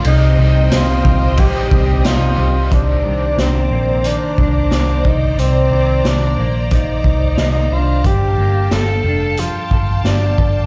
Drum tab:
RD |x-x-x-x-|--------|--------|--------|
HH |--------|x-x-x-x-|x-x-x-x-|x-x-x-x-|
TB |--x---x-|--------|--------|--------|
SD |--o---o-|--o---o-|--o---o-|--o---o-|
BD |---ooo--|o----o-o|----oo--|o----o-o|